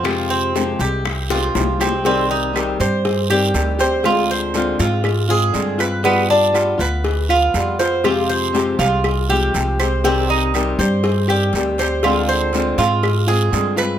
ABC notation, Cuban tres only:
X:1
M:4/4
L:1/8
Q:1/4=120
K:Cm
V:1 name="Cuban tres"
F C2 G2 F2 C | C E2 c2 G2 c | F c2 F2 A2 =B | =B, D2 =B2 F2 c |
F c2 F2 G2 c | C E2 c2 G2 c | F c2 F2 A2 =B |]